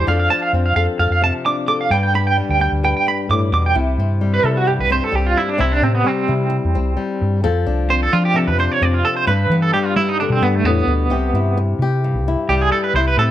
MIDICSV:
0, 0, Header, 1, 5, 480
1, 0, Start_track
1, 0, Key_signature, 0, "major"
1, 0, Tempo, 460123
1, 72, Time_signature, 4, 2, 24, 8
1, 13884, End_track
2, 0, Start_track
2, 0, Title_t, "Clean electric guitar"
2, 0, Program_c, 0, 27
2, 86, Note_on_c, 0, 77, 73
2, 181, Note_off_c, 0, 77, 0
2, 204, Note_on_c, 0, 77, 66
2, 296, Note_off_c, 0, 77, 0
2, 316, Note_on_c, 0, 81, 70
2, 415, Note_off_c, 0, 81, 0
2, 441, Note_on_c, 0, 77, 63
2, 535, Note_off_c, 0, 77, 0
2, 684, Note_on_c, 0, 77, 55
2, 777, Note_off_c, 0, 77, 0
2, 794, Note_on_c, 0, 77, 75
2, 894, Note_off_c, 0, 77, 0
2, 1037, Note_on_c, 0, 77, 76
2, 1136, Note_off_c, 0, 77, 0
2, 1169, Note_on_c, 0, 77, 60
2, 1260, Note_off_c, 0, 77, 0
2, 1290, Note_on_c, 0, 81, 71
2, 1383, Note_off_c, 0, 81, 0
2, 1521, Note_on_c, 0, 86, 74
2, 1619, Note_off_c, 0, 86, 0
2, 1754, Note_on_c, 0, 86, 71
2, 1855, Note_off_c, 0, 86, 0
2, 1885, Note_on_c, 0, 77, 59
2, 1978, Note_off_c, 0, 77, 0
2, 1995, Note_on_c, 0, 79, 78
2, 2095, Note_off_c, 0, 79, 0
2, 2120, Note_on_c, 0, 79, 72
2, 2215, Note_off_c, 0, 79, 0
2, 2245, Note_on_c, 0, 83, 76
2, 2341, Note_off_c, 0, 83, 0
2, 2367, Note_on_c, 0, 79, 75
2, 2460, Note_off_c, 0, 79, 0
2, 2613, Note_on_c, 0, 79, 60
2, 2704, Note_off_c, 0, 79, 0
2, 2726, Note_on_c, 0, 79, 74
2, 2822, Note_off_c, 0, 79, 0
2, 2968, Note_on_c, 0, 79, 77
2, 3063, Note_off_c, 0, 79, 0
2, 3095, Note_on_c, 0, 79, 66
2, 3185, Note_off_c, 0, 79, 0
2, 3214, Note_on_c, 0, 83, 70
2, 3307, Note_off_c, 0, 83, 0
2, 3450, Note_on_c, 0, 86, 79
2, 3545, Note_off_c, 0, 86, 0
2, 3690, Note_on_c, 0, 86, 69
2, 3785, Note_off_c, 0, 86, 0
2, 3820, Note_on_c, 0, 79, 58
2, 3908, Note_off_c, 0, 79, 0
2, 4524, Note_on_c, 0, 71, 92
2, 4648, Note_off_c, 0, 71, 0
2, 4648, Note_on_c, 0, 69, 80
2, 4762, Note_off_c, 0, 69, 0
2, 4768, Note_on_c, 0, 66, 76
2, 4884, Note_off_c, 0, 66, 0
2, 4884, Note_on_c, 0, 67, 80
2, 5000, Note_off_c, 0, 67, 0
2, 5012, Note_on_c, 0, 71, 74
2, 5121, Note_off_c, 0, 71, 0
2, 5133, Note_on_c, 0, 72, 108
2, 5257, Note_off_c, 0, 72, 0
2, 5257, Note_on_c, 0, 69, 83
2, 5376, Note_off_c, 0, 69, 0
2, 5376, Note_on_c, 0, 67, 78
2, 5486, Note_off_c, 0, 67, 0
2, 5491, Note_on_c, 0, 65, 68
2, 5601, Note_off_c, 0, 65, 0
2, 5606, Note_on_c, 0, 64, 78
2, 5722, Note_off_c, 0, 64, 0
2, 5722, Note_on_c, 0, 62, 60
2, 5836, Note_off_c, 0, 62, 0
2, 5847, Note_on_c, 0, 64, 83
2, 5962, Note_off_c, 0, 64, 0
2, 5967, Note_on_c, 0, 62, 74
2, 6085, Note_off_c, 0, 62, 0
2, 6085, Note_on_c, 0, 60, 66
2, 6201, Note_off_c, 0, 60, 0
2, 6205, Note_on_c, 0, 59, 66
2, 6328, Note_off_c, 0, 59, 0
2, 6328, Note_on_c, 0, 60, 65
2, 7764, Note_off_c, 0, 60, 0
2, 8243, Note_on_c, 0, 72, 85
2, 8360, Note_off_c, 0, 72, 0
2, 8375, Note_on_c, 0, 69, 74
2, 8480, Note_on_c, 0, 65, 95
2, 8483, Note_off_c, 0, 69, 0
2, 8598, Note_off_c, 0, 65, 0
2, 8608, Note_on_c, 0, 67, 88
2, 8723, Note_off_c, 0, 67, 0
2, 8723, Note_on_c, 0, 69, 73
2, 8840, Note_off_c, 0, 69, 0
2, 8841, Note_on_c, 0, 71, 71
2, 8956, Note_off_c, 0, 71, 0
2, 8969, Note_on_c, 0, 72, 81
2, 9092, Note_off_c, 0, 72, 0
2, 9092, Note_on_c, 0, 73, 92
2, 9208, Note_off_c, 0, 73, 0
2, 9208, Note_on_c, 0, 74, 93
2, 9322, Note_off_c, 0, 74, 0
2, 9328, Note_on_c, 0, 65, 57
2, 9438, Note_on_c, 0, 69, 83
2, 9439, Note_off_c, 0, 65, 0
2, 9557, Note_off_c, 0, 69, 0
2, 9562, Note_on_c, 0, 72, 84
2, 9672, Note_off_c, 0, 72, 0
2, 9676, Note_on_c, 0, 71, 84
2, 10014, Note_off_c, 0, 71, 0
2, 10039, Note_on_c, 0, 69, 83
2, 10152, Note_off_c, 0, 69, 0
2, 10156, Note_on_c, 0, 67, 73
2, 10284, Note_off_c, 0, 67, 0
2, 10284, Note_on_c, 0, 65, 73
2, 10391, Note_off_c, 0, 65, 0
2, 10395, Note_on_c, 0, 64, 99
2, 10516, Note_off_c, 0, 64, 0
2, 10524, Note_on_c, 0, 63, 80
2, 10637, Note_off_c, 0, 63, 0
2, 10641, Note_on_c, 0, 62, 65
2, 10759, Note_off_c, 0, 62, 0
2, 10769, Note_on_c, 0, 60, 68
2, 10877, Note_on_c, 0, 59, 71
2, 10879, Note_off_c, 0, 60, 0
2, 11008, Note_off_c, 0, 59, 0
2, 11008, Note_on_c, 0, 57, 78
2, 11112, Note_off_c, 0, 57, 0
2, 11112, Note_on_c, 0, 59, 77
2, 12074, Note_off_c, 0, 59, 0
2, 13030, Note_on_c, 0, 67, 74
2, 13151, Note_off_c, 0, 67, 0
2, 13159, Note_on_c, 0, 68, 73
2, 13266, Note_off_c, 0, 68, 0
2, 13271, Note_on_c, 0, 69, 82
2, 13388, Note_off_c, 0, 69, 0
2, 13392, Note_on_c, 0, 71, 72
2, 13509, Note_off_c, 0, 71, 0
2, 13517, Note_on_c, 0, 72, 97
2, 13634, Note_off_c, 0, 72, 0
2, 13641, Note_on_c, 0, 71, 85
2, 13753, Note_off_c, 0, 71, 0
2, 13758, Note_on_c, 0, 69, 88
2, 13879, Note_off_c, 0, 69, 0
2, 13884, End_track
3, 0, Start_track
3, 0, Title_t, "Nylon-string guitar"
3, 0, Program_c, 1, 24
3, 74, Note_on_c, 1, 53, 66
3, 79, Note_on_c, 1, 62, 51
3, 89, Note_on_c, 1, 69, 55
3, 310, Note_off_c, 1, 69, 0
3, 314, Note_on_c, 1, 72, 58
3, 564, Note_on_c, 1, 60, 52
3, 792, Note_off_c, 1, 72, 0
3, 796, Note_on_c, 1, 69, 54
3, 1028, Note_off_c, 1, 69, 0
3, 1040, Note_on_c, 1, 69, 54
3, 1268, Note_on_c, 1, 48, 59
3, 1507, Note_off_c, 1, 62, 0
3, 1520, Note_on_c, 1, 62, 50
3, 1737, Note_off_c, 1, 69, 0
3, 1749, Note_on_c, 1, 69, 51
3, 1964, Note_off_c, 1, 69, 0
3, 1972, Note_off_c, 1, 60, 0
3, 1992, Note_off_c, 1, 48, 0
3, 1996, Note_off_c, 1, 53, 0
3, 1996, Note_on_c, 1, 43, 73
3, 1998, Note_off_c, 1, 62, 0
3, 2004, Note_on_c, 1, 59, 53
3, 2009, Note_on_c, 1, 62, 54
3, 2016, Note_on_c, 1, 71, 63
3, 2225, Note_off_c, 1, 71, 0
3, 2238, Note_on_c, 1, 71, 58
3, 2478, Note_on_c, 1, 55, 55
3, 2701, Note_off_c, 1, 62, 0
3, 2713, Note_on_c, 1, 62, 49
3, 2949, Note_off_c, 1, 71, 0
3, 2961, Note_on_c, 1, 71, 57
3, 3436, Note_off_c, 1, 43, 0
3, 3440, Note_on_c, 1, 45, 60
3, 3674, Note_off_c, 1, 45, 0
3, 3678, Note_on_c, 1, 47, 60
3, 3890, Note_off_c, 1, 55, 0
3, 3892, Note_off_c, 1, 71, 0
3, 3894, Note_off_c, 1, 59, 0
3, 3907, Note_on_c, 1, 48, 63
3, 3912, Note_off_c, 1, 62, 0
3, 3916, Note_on_c, 1, 64, 60
3, 3918, Note_off_c, 1, 47, 0
3, 4168, Note_on_c, 1, 60, 52
3, 4393, Note_on_c, 1, 55, 56
3, 4630, Note_off_c, 1, 64, 0
3, 4634, Note_on_c, 1, 64, 54
3, 4871, Note_on_c, 1, 43, 55
3, 4873, Note_off_c, 1, 48, 0
3, 5109, Note_off_c, 1, 60, 0
3, 5113, Note_on_c, 1, 60, 63
3, 5327, Note_off_c, 1, 55, 0
3, 5339, Note_on_c, 1, 55, 61
3, 5801, Note_off_c, 1, 55, 0
3, 5809, Note_off_c, 1, 64, 0
3, 5821, Note_on_c, 1, 48, 78
3, 5826, Note_off_c, 1, 60, 0
3, 5830, Note_on_c, 1, 60, 56
3, 5836, Note_off_c, 1, 43, 0
3, 6078, Note_off_c, 1, 60, 0
3, 6082, Note_on_c, 1, 60, 52
3, 6300, Note_on_c, 1, 55, 54
3, 6552, Note_on_c, 1, 64, 52
3, 6790, Note_off_c, 1, 48, 0
3, 7029, Note_off_c, 1, 60, 0
3, 7041, Note_on_c, 1, 60, 58
3, 7255, Note_off_c, 1, 55, 0
3, 7268, Note_on_c, 1, 55, 59
3, 7726, Note_off_c, 1, 55, 0
3, 7727, Note_off_c, 1, 64, 0
3, 7732, Note_off_c, 1, 60, 0
3, 7758, Note_on_c, 1, 53, 80
3, 7759, Note_on_c, 1, 69, 72
3, 7995, Note_on_c, 1, 62, 58
3, 8229, Note_on_c, 1, 60, 59
3, 8474, Note_off_c, 1, 62, 0
3, 8478, Note_on_c, 1, 62, 52
3, 8695, Note_on_c, 1, 48, 67
3, 8944, Note_off_c, 1, 62, 0
3, 8957, Note_on_c, 1, 62, 59
3, 9191, Note_off_c, 1, 60, 0
3, 9203, Note_on_c, 1, 60, 69
3, 9650, Note_off_c, 1, 69, 0
3, 9653, Note_off_c, 1, 60, 0
3, 9667, Note_off_c, 1, 48, 0
3, 9671, Note_on_c, 1, 43, 71
3, 9678, Note_off_c, 1, 62, 0
3, 9679, Note_off_c, 1, 53, 0
3, 9689, Note_on_c, 1, 62, 58
3, 9926, Note_on_c, 1, 59, 59
3, 10156, Note_on_c, 1, 55, 60
3, 10388, Note_off_c, 1, 62, 0
3, 10400, Note_on_c, 1, 62, 55
3, 10648, Note_on_c, 1, 50, 64
3, 10864, Note_off_c, 1, 59, 0
3, 10877, Note_on_c, 1, 59, 52
3, 11109, Note_off_c, 1, 43, 0
3, 11114, Note_on_c, 1, 45, 68
3, 11343, Note_off_c, 1, 45, 0
3, 11347, Note_on_c, 1, 47, 61
3, 11569, Note_off_c, 1, 59, 0
3, 11574, Note_off_c, 1, 50, 0
3, 11581, Note_on_c, 1, 48, 79
3, 11592, Note_off_c, 1, 47, 0
3, 11592, Note_on_c, 1, 67, 62
3, 11599, Note_off_c, 1, 62, 0
3, 11838, Note_on_c, 1, 64, 57
3, 12070, Note_off_c, 1, 55, 0
3, 12327, Note_off_c, 1, 67, 0
3, 12332, Note_on_c, 1, 67, 62
3, 12548, Note_off_c, 1, 48, 0
3, 12563, Note_on_c, 1, 43, 58
3, 12796, Note_off_c, 1, 64, 0
3, 12809, Note_on_c, 1, 64, 65
3, 13040, Note_on_c, 1, 55, 67
3, 13489, Note_off_c, 1, 55, 0
3, 13493, Note_off_c, 1, 64, 0
3, 13518, Note_off_c, 1, 43, 0
3, 13528, Note_on_c, 1, 64, 64
3, 13760, Note_on_c, 1, 60, 60
3, 13884, Note_off_c, 1, 60, 0
3, 13884, Note_off_c, 1, 64, 0
3, 13884, Note_off_c, 1, 67, 0
3, 13884, End_track
4, 0, Start_track
4, 0, Title_t, "Fingered electric bass"
4, 0, Program_c, 2, 33
4, 78, Note_on_c, 2, 41, 80
4, 282, Note_off_c, 2, 41, 0
4, 552, Note_on_c, 2, 41, 88
4, 759, Note_off_c, 2, 41, 0
4, 792, Note_on_c, 2, 41, 84
4, 898, Note_off_c, 2, 41, 0
4, 1033, Note_on_c, 2, 41, 98
4, 1139, Note_off_c, 2, 41, 0
4, 1149, Note_on_c, 2, 41, 64
4, 1359, Note_off_c, 2, 41, 0
4, 1986, Note_on_c, 2, 43, 104
4, 2509, Note_off_c, 2, 43, 0
4, 2600, Note_on_c, 2, 38, 78
4, 2807, Note_off_c, 2, 38, 0
4, 2836, Note_on_c, 2, 38, 75
4, 3044, Note_off_c, 2, 38, 0
4, 3436, Note_on_c, 2, 43, 79
4, 3643, Note_off_c, 2, 43, 0
4, 3672, Note_on_c, 2, 40, 83
4, 3881, Note_off_c, 2, 40, 0
4, 3910, Note_on_c, 2, 36, 86
4, 4120, Note_off_c, 2, 36, 0
4, 4149, Note_on_c, 2, 43, 88
4, 4566, Note_off_c, 2, 43, 0
4, 4628, Note_on_c, 2, 48, 91
4, 4997, Note_on_c, 2, 36, 69
4, 5013, Note_off_c, 2, 48, 0
4, 5206, Note_off_c, 2, 36, 0
4, 5350, Note_on_c, 2, 36, 80
4, 5560, Note_off_c, 2, 36, 0
4, 5836, Note_on_c, 2, 36, 84
4, 6044, Note_off_c, 2, 36, 0
4, 6074, Note_on_c, 2, 45, 98
4, 6283, Note_off_c, 2, 45, 0
4, 6560, Note_on_c, 2, 48, 92
4, 6872, Note_off_c, 2, 48, 0
4, 6932, Note_on_c, 2, 40, 91
4, 7029, Note_off_c, 2, 40, 0
4, 7045, Note_on_c, 2, 36, 85
4, 7249, Note_off_c, 2, 36, 0
4, 7527, Note_on_c, 2, 43, 93
4, 7761, Note_on_c, 2, 41, 100
4, 7777, Note_off_c, 2, 43, 0
4, 7967, Note_off_c, 2, 41, 0
4, 7999, Note_on_c, 2, 36, 90
4, 8412, Note_off_c, 2, 36, 0
4, 8482, Note_on_c, 2, 53, 95
4, 8837, Note_on_c, 2, 41, 73
4, 8852, Note_off_c, 2, 53, 0
4, 9045, Note_off_c, 2, 41, 0
4, 9194, Note_on_c, 2, 41, 84
4, 9403, Note_off_c, 2, 41, 0
4, 9671, Note_on_c, 2, 43, 90
4, 9881, Note_off_c, 2, 43, 0
4, 9907, Note_on_c, 2, 52, 92
4, 10119, Note_off_c, 2, 52, 0
4, 10390, Note_on_c, 2, 55, 90
4, 10706, Note_off_c, 2, 55, 0
4, 10741, Note_on_c, 2, 47, 78
4, 10851, Note_off_c, 2, 47, 0
4, 10862, Note_on_c, 2, 43, 77
4, 11075, Note_off_c, 2, 43, 0
4, 11099, Note_on_c, 2, 40, 76
4, 11324, Note_off_c, 2, 40, 0
4, 11336, Note_on_c, 2, 38, 83
4, 11580, Note_off_c, 2, 38, 0
4, 11580, Note_on_c, 2, 36, 83
4, 11794, Note_off_c, 2, 36, 0
4, 11820, Note_on_c, 2, 43, 87
4, 12240, Note_off_c, 2, 43, 0
4, 12298, Note_on_c, 2, 48, 89
4, 12663, Note_on_c, 2, 36, 76
4, 12679, Note_off_c, 2, 48, 0
4, 12876, Note_off_c, 2, 36, 0
4, 13026, Note_on_c, 2, 36, 84
4, 13236, Note_off_c, 2, 36, 0
4, 13496, Note_on_c, 2, 36, 95
4, 13710, Note_off_c, 2, 36, 0
4, 13737, Note_on_c, 2, 45, 94
4, 13884, Note_off_c, 2, 45, 0
4, 13884, End_track
5, 0, Start_track
5, 0, Title_t, "Muted nylon-string guitar strokes"
5, 3201, Note_on_c, 9, 29, 56
5, 3306, Note_off_c, 9, 29, 0
5, 6778, Note_on_c, 9, 29, 63
5, 6882, Note_off_c, 9, 29, 0
5, 12074, Note_on_c, 9, 29, 60
5, 12178, Note_off_c, 9, 29, 0
5, 13521, Note_on_c, 9, 29, 70
5, 13626, Note_off_c, 9, 29, 0
5, 13884, End_track
0, 0, End_of_file